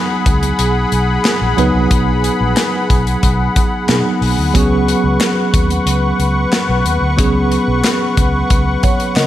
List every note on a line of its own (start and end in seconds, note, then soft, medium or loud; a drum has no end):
0.00 1.54 F#3 medium
0.00 1.54 B3 medium
0.00 1.54 D#4 medium
0.00 1.55 G#4 medium
0.00 4.51 G#4 medium
0.00 9.27 F#5 medium
0.00 4.51 B5 medium
0.26 0.51 C#2 medium
0.26 kick medium
0.26 closed hi-hat medium
0.43 closed hi-hat medium
0.59 0.84 B1 medium
0.59 closed hi-hat medium
0.92 1.17 B1 medium
0.92 closed hi-hat medium
1.25 snare loud
1.25 clap medium
1.25 closed hi-hat medium
1.41 1.54 A#1 medium
1.57 1.70 C#2 medium
1.57 3.84 F#3 medium
1.57 3.85 B3 medium
1.57 3.85 D#4 medium
1.57 3.86 B4 medium
1.57 closed hi-hat medium
1.74 1.87 C2 medium
1.91 2.28 B1 loud
1.91 kick loud
1.91 closed hi-hat medium
2.24 closed hi-hat medium
2.40 2.53 A#1 medium
2.57 snare loud
2.57 clap medium
2.57 closed hi-hat medium
2.90 3.15 B1 medium
2.90 kick medium
2.90 closed hi-hat medium
3.07 closed hi-hat soft
3.23 3.48 B1 medium
3.23 kick medium
3.23 closed hi-hat medium
3.56 kick medium
3.56 closed hi-hat medium
3.89 4.01 B2 loud
3.89 4.53 F#3 medium
3.89 4.54 B3 soft
3.89 4.55 D#4 soft
3.89 4.55 G#4 medium
3.89 snare loud
3.89 clap medium
3.89 closed hi-hat medium
4.21 4.34 B1 medium
4.21 open hi-hat medium
4.38 4.50 D2 medium
4.54 4.92 C#2 loud
4.54 7.14 F#3 medium
4.54 7.15 B3 medium
4.54 7.15 C#4 medium
4.54 7.15 G#4 medium
4.54 9.27 B4 medium
4.54 9.27 C#6 medium
4.54 kick loud
4.54 closed hi-hat loud
4.88 closed hi-hat medium
5.04 5.16 C#2 medium
5.21 snare loud
5.21 clap medium
5.21 closed hi-hat medium
5.54 5.79 D#2 medium
5.54 kick medium
5.54 closed hi-hat medium
5.70 closed hi-hat medium
5.86 6.11 C#2 medium
5.86 closed hi-hat medium
6.19 6.44 C#2 medium
6.19 closed hi-hat medium
6.53 snare loud
6.53 clap medium
6.53 closed hi-hat medium
6.69 6.81 B1 medium
6.85 6.98 D#2 medium
6.85 closed hi-hat medium
7.02 7.14 D2 medium
7.17 9.27 F#3 medium
7.17 9.27 B3 medium
7.17 9.27 C#4 medium
7.17 8.81 G#4 medium
7.17 kick loud
7.17 closed hi-hat loud
7.52 closed hi-hat medium
7.68 7.80 B1 medium
7.84 snare loud
7.84 clap medium
7.84 closed hi-hat medium
8.17 8.42 C#2 medium
8.17 kick medium
8.17 closed hi-hat medium
8.50 8.75 C#2 medium
8.50 kick medium
8.50 closed hi-hat medium
8.83 9.15 C#5 medium
8.83 9.15 F#5 medium
8.83 kick medium
8.83 closed hi-hat medium
9.00 closed hi-hat soft
9.16 9.27 C#3 loud
9.16 9.27 A#4 medium
9.16 9.27 D#5 medium
9.16 snare loud
9.16 clap medium
9.16 closed hi-hat medium